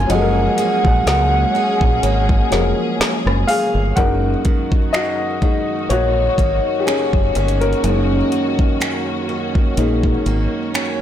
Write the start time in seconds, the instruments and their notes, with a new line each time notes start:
Already playing: steel-string acoustic guitar A#3 C#4, string section A#3, bansuri G#5
0.07 fingered electric bass F#1, grand piano F3 F#3, steel-string acoustic guitar F#3 G#4, string section G#3 C#4 G#4, celesta D#5, closed hi-hat
0.11 grand piano G#4 A4, bansuri F#5
0.21 grand piano A#4
0.58 steel-string acoustic guitar A#3 G#4, closed hi-hat
0.85 fingered electric bass A#1, kick
1.06 fingered electric bass C#2, snare, closed hi-hat
1.55 steel-string acoustic guitar A#3 G#4
1.81 fingered electric bass A#1, kick
2.03 fingered electric bass G#1, steel-string acoustic guitar A#3, celesta C#5, closed hi-hat
2.29 kick
2.50 fingered electric bass F1, grand piano F3 F#3 G#4 A#4, snare, closed hi-hat
3.00 muted fingered electric bass stroke, snare, closed hi-hat
3.26 fingered electric bass F#1, cross-stick
3.47 steel-string acoustic guitar G#4, grand piano G#4 F5, open hi-hat
3.75 fingered electric bass G1
3.96 fingered electric bass F#1, steel-string acoustic guitar F#2, grand piano G#3 A#3 D#4 A#4 F#5, string section A#3 D#4 F#4, kick, closed hi-hat
4.45 steel-string acoustic guitar D#3, kick, closed hi-hat
4.72 kick
4.93 steel-string acoustic guitar A#3, grand piano F#4 D#5, finger snap, closed hi-hat
5.42 steel-string acoustic guitar D#3, grand piano G#3 A#3 D#4, kick
5.89 fingered electric bass A#1, steel-string acoustic guitar D#3, grand piano F#4 C#5, closed hi-hat
6.38 fingered electric bass G#1, steel-string acoustic guitar A#3, kick, closed hi-hat
6.79 grand piano G4
6.86 steel-string acoustic guitar C#4, grand piano C#4 G#4, finger snap, closed hi-hat
7.13 fingered electric bass F#1, kick
7.35 fingered electric bass G1, steel-string acoustic guitar D#3 A#3 C#4, closed hi-hat
7.48 closed hi-hat
7.61 grand piano C#4 A#4, closed hi-hat
7.73 closed hi-hat
7.84 fingered electric bass F#1, steel-string acoustic guitar F#2, grand piano G#3 A#3 D#4, string section C#4, closed hi-hat
8.32 steel-string acoustic guitar D#3, closed hi-hat
8.59 kick
8.80 steel-string acoustic guitar A#3, finger snap, closed hi-hat
9.29 steel-string acoustic guitar D#3
9.55 kick
9.77 fingered electric bass A#1, steel-string acoustic guitar D#3, grand piano G#3 A#3 D#4, closed hi-hat
10.03 kick
10.26 fingered electric bass G#1, steel-string acoustic guitar A#3, closed hi-hat
10.74 steel-string acoustic guitar C#4, finger snap, closed hi-hat